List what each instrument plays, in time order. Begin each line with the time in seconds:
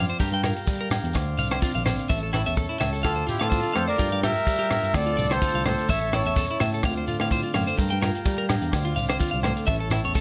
Already playing: steel-string acoustic guitar F3 C4 C5, transistor combo organ D5 F5 C6
0.09 clean electric guitar C5, closed hi-hat, shekere
0.19 tine electric piano G2, steel-string acoustic guitar G3 A#4, clean electric guitar G4, transistor combo organ G5 A#5, kick, closed hi-hat, shekere
0.32 tine electric piano G2, clean electric guitar G5
0.43 steel-string acoustic guitar F4, clean electric guitar A#4, cross-stick, closed hi-hat, low agogo, shekere
0.56 closed hi-hat, shekere
0.66 tine electric piano G3, steel-string acoustic guitar A#4, kick, closed hi-hat, shekere
0.81 clean electric guitar A#4
0.90 steel-string acoustic guitar D4, cross-stick, closed hi-hat, low agogo, shekere
1.04 tine electric piano E2, closed hi-hat, shekere
1.14 tine electric piano D2, steel-string acoustic guitar D3 C5, transistor combo organ D5 C6, kick, cross-stick, closed hi-hat, low agogo, shekere
1.38 tine electric piano C2, steel-string acoustic guitar C4, clean electric guitar F5, closed hi-hat, shekere
1.51 clean electric guitar C5, cross-stick, closed hi-hat, low agogo, shekere
1.62 steel-string acoustic guitar C3, clean electric guitar F4, kick, closed hi-hat, shekere
1.75 tine electric piano A#1, clean electric guitar F5
1.85 steel-string acoustic guitar A#2, clean electric guitar C5, cross-stick, closed hi-hat, low agogo, shekere
1.99 closed hi-hat, shekere
2.09 tine electric piano A1, transistor combo organ C#5 E5 A5, steel-string acoustic guitar C#5, clean electric guitar E5, kick, closed hi-hat, shekere
2.23 clean electric guitar A4
2.33 steel-string acoustic guitar C#4, clean electric guitar E4, cross-stick, closed hi-hat, low agogo, shekere
2.46 tine electric piano E2, clean electric guitar E5, closed hi-hat, shekere
2.56 steel-string acoustic guitar A#2, clean electric guitar A4, kick, closed hi-hat, shekere
2.69 clean electric guitar E4
2.80 tine electric piano C#2, steel-string acoustic guitar C#3, clean electric guitar E5, cross-stick, closed hi-hat, low agogo, shekere
2.93 clean electric guitar A4, closed hi-hat, shekere
3.03 tine electric piano D2, steel-string acoustic guitar D3 F4, transistor combo organ F4 D5 C6, trumpet F4, muted trumpet A4, clean electric guitar F5, kick, cross-stick, closed hi-hat, low agogo, shekere
3.16 clean electric guitar C5
3.27 steel-string acoustic guitar C4, trumpet E4, clean electric guitar F4, muted trumpet G4, closed hi-hat, shekere
3.39 tine electric piano A2, trumpet F4, muted trumpet A4, clean electric guitar F5, cross-stick, closed hi-hat, low agogo
3.50 steel-string acoustic guitar F4, clean electric guitar C5, kick, closed hi-hat, shekere
3.63 clean electric guitar F4
3.73 tine electric piano F2, steel-string acoustic guitar A3, trumpet A4, muted trumpet C5, clean electric guitar F5, cross-stick, closed hi-hat, low agogo
3.87 trumpet A#4, clean electric guitar C5, muted trumpet D5, closed hi-hat, shekere
3.98 tine electric piano G2, steel-string acoustic guitar G3 A#4, clean electric guitar F4, transistor combo organ G5 A#5, kick, closed hi-hat, shekere
4.12 tine electric piano G2, clean electric guitar F5
4.23 steel-string acoustic guitar F4, clean electric guitar G4, trumpet A#4, muted trumpet E5, cross-stick, closed hi-hat, low agogo, shekere
4.36 closed hi-hat, shekere
4.47 tine electric piano G3, steel-string acoustic guitar A#4, kick, closed hi-hat, shekere
4.59 clean electric guitar G4
4.70 steel-string acoustic guitar D4, cross-stick, closed hi-hat, low agogo, shekere
4.83 tine electric piano G2, closed hi-hat, shekere
4.94 tine electric piano D2, steel-string acoustic guitar D3 A3 C4 C5, trumpet A4, transistor combo organ D5 C6, muted trumpet D5, muted steel-string acoustic guitar stroke, kick, cross-stick, closed hi-hat, low agogo, shekere
5.06 clean electric guitar F4
5.17 tine electric piano C2, steel-string acoustic guitar C4, clean electric guitar D5, closed hi-hat, shekere
5.30 trumpet A4, clean electric guitar C5, muted trumpet C5, cross-stick, closed hi-hat, low agogo, shekere
5.42 clean electric guitar F4, steel-string acoustic guitar F4, kick, closed hi-hat, shekere
5.55 tine electric piano C2, clean electric guitar F5
5.65 steel-string acoustic guitar A3, trumpet A4, clean electric guitar C5, muted trumpet C5, cross-stick, closed hi-hat, low agogo, shekere
5.78 closed hi-hat, shekere
5.88 tine electric piano A1, steel-string acoustic guitar A2, transistor combo organ C#5 E5 A5, trumpet C#5, clean electric guitar E5, muted trumpet E5, kick, closed hi-hat, shekere
6.01 clean electric guitar A4
6.13 steel-string acoustic guitar C#4, clean electric guitar E4, trumpet A4, muted trumpet C#5, cross-stick, closed hi-hat, low agogo, shekere
6.26 tine electric piano E2, clean electric guitar E5, closed hi-hat, shekere
6.36 steel-string acoustic guitar A#2, clean electric guitar A4, kick, closed hi-hat, shekere
6.51 clean electric guitar E4
6.60 tine electric piano A2, steel-string acoustic guitar C#3, clean electric guitar E5, cross-stick, closed hi-hat, low agogo, shekere
6.72 clean electric guitar A4, closed hi-hat, shekere
6.83 tine electric piano D2, steel-string acoustic guitar D3 A3 C4 F4, transistor combo organ D5 F5 C6, clean electric guitar F5, kick, cross-stick, closed hi-hat, low agogo, shekere
6.87 steel-string acoustic guitar C5
6.97 clean electric guitar C5
7.07 steel-string acoustic guitar C4, clean electric guitar F4, closed hi-hat, shekere
7.20 tine electric piano A2, clean electric guitar F5, cross-stick, closed hi-hat, low agogo, shekere
7.31 steel-string acoustic guitar F4, clean electric guitar C5, kick, closed hi-hat, shekere
7.43 clean electric guitar F4
7.54 tine electric piano F#2, steel-string acoustic guitar A3, clean electric guitar F5, cross-stick, closed hi-hat, low agogo, shekere
7.67 clean electric guitar C5, closed hi-hat, shekere
7.78 tine electric piano G2, steel-string acoustic guitar G3 A#4, transistor combo organ G5 A#5, muted clean electric guitar stroke, kick, closed hi-hat, shekere
7.90 tine electric piano G2, clean electric guitar G5
8.01 steel-string acoustic guitar F4, clean electric guitar A#4, cross-stick, closed hi-hat, low agogo, shekere
8.15 closed hi-hat, shekere
8.25 tine electric piano G3, steel-string acoustic guitar A#4, kick, closed hi-hat, shekere
8.38 clean electric guitar A#4
8.49 steel-string acoustic guitar D4, cross-stick, closed hi-hat, low agogo, shekere
8.62 tine electric piano E2, closed hi-hat, shekere
8.71 tine electric piano D2, steel-string acoustic guitar D3 C5, transistor combo organ D5 C6, kick, cross-stick, closed hi-hat, low agogo, shekere
8.85 clean electric guitar F4
8.96 tine electric piano C2, steel-string acoustic guitar C4, clean electric guitar F5, closed hi-hat, shekere
9.09 clean electric guitar C5, cross-stick, closed hi-hat, low agogo, shekere
9.20 clean electric guitar F4, steel-string acoustic guitar F4, kick, closed hi-hat, shekere
9.31 tine electric piano C2, clean electric guitar F5
9.43 steel-string acoustic guitar A3, clean electric guitar C5, cross-stick, closed hi-hat, low agogo, shekere
9.57 closed hi-hat, shekere
9.67 tine electric piano A1, steel-string acoustic guitar A2 A3 C#4 E4, transistor combo organ C#5 E5 A5, clean electric guitar E5, kick, closed hi-hat, shekere
9.71 steel-string acoustic guitar C#5
9.80 clean electric guitar A4
9.90 steel-string acoustic guitar C#4, clean electric guitar E4, cross-stick, closed hi-hat, low agogo, shekere
10.05 tine electric piano E2, clean electric guitar C#5, closed hi-hat
10.14 steel-string acoustic guitar E4, clean electric guitar A4, kick, closed hi-hat, shekere